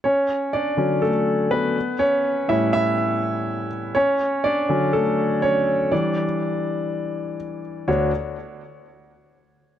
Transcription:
X:1
M:4/4
L:1/8
Q:1/4=123
K:D
V:1 name="Grand piano"
[Cc]2 [Dd]2 [A,A]2 [B,B]2 | [Cc]2 [Ee] [Ee]4 z | [Cc]2 [Dd]2 [A,A]2 [Cc]2 | d6 z2 |
[DFc] z6 z |]
V:2 name="Grand piano" clef=bass
z3 [D,F,C] z4 | z2 [A,,G,C]6 | z3 [D,F,C] z4 | [E,G,D] z6 z |
D,, z6 z |]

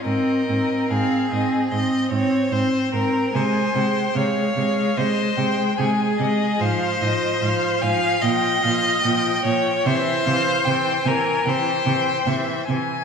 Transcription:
X:1
M:4/4
L:1/8
Q:1/4=74
K:Ab
V:1 name="Violin"
e2 f e c4 | a g f2 e g a e | [K:Cphr] f e f a g f g2 | =e f g a g2 e a |]
V:2 name="Violin"
B2 A2 e d c B | c2 d2 c2 A2 | [K:Cphr] c3 f e3 d | c3 B c3 z |]
V:3 name="Viola" clef=bass
C C C C C C C C | A, A, A, A, A, A, A, A, | [K:Cphr] F, F, F, F, F, F, F, F, | =E, E, E, E, E, E, E, E, |]
V:4 name="Cello" clef=bass
A,, A,, A,, A,, A,, A,, A,, A,, | C, C, C, C, C, C, C, C, | [K:Cphr] A,, A,, A,, A,, B,, B,, B,, B,, | C, C, C, C, C, C, C, C, |]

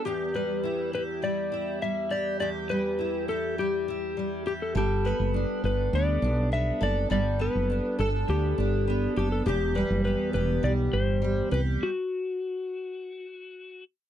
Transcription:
X:1
M:4/4
L:1/16
Q:1/4=102
K:Em
V:1 name="Electric slide guitar"
G2 B4 B2 d4 e2 d2 | d2 B4 A2 G6 G A | G2 B4 B2 d4 e2 d2 | d2 B4 A2 G6 G A |
G2 B2 B2 B2 d2 c4 B2 | F12- F2 z2 |]
V:2 name="Steel-string acoustic guitar"
[E,,G]2 G,2 E2 G2 G,2 E2 G,2 G2 | [E,,G]2 G,2 E2 G2 G,2 E2 G,2 G2 | [G,A]2 B,2 D2 A2 B,2 D2 B,2 A2 | [G,A]2 B,2 D2 A2 B,2 D2 B,2 A2 |
[E,,G]2 G,2 B,2 G2 G,4 G,2 G2 | z16 |]
V:3 name="Fretless electric bass" clef=bass
z16 | z16 | G,,,3 F,,,2 z G,,,2 D,,2 B,,,4 F,,,2 | G,,,3 F,,,2 z G,,,2 D,,2 G,,,4 F,,,2 |
E,,,3 F,,,2 z E,,,2 B,,,2 G,,,4 C,,2 | z16 |]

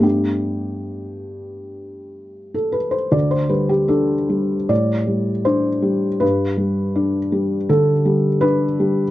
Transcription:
X:1
M:4/4
L:1/16
Q:1/4=78
K:G
V:1 name="Felt piano"
G12- G A B c | d c B G A4 d4 c4 | B8 A4 B4 |]
V:2 name="Felt piano" clef=bass
[G,,A,B,D]16 | D,,2 G,2 D2 G,2 A,,2 G,2 D2 G,2 | G,,2 G,2 D2 G,2 D,2 G,2 D2 G,2 |]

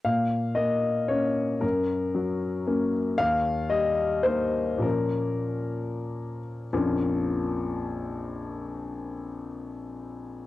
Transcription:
X:1
M:3/4
L:1/8
Q:1/4=100
K:Bbm
V:1 name="Grand piano"
f2 e2 d2 | B4- B z | f2 e2 c2 | B4- B z |
[B,,,F,,F,B,DF]6- | [B,,,F,,F,B,DF]6 |]
V:2 name="Grand piano"
B,,2 B,2 [B,D]2 | G,,2 G,2 [B,D]2 | E,,2 =G,2 [B,E]2 | [B,,F,B,D]6 |
z6 | z6 |]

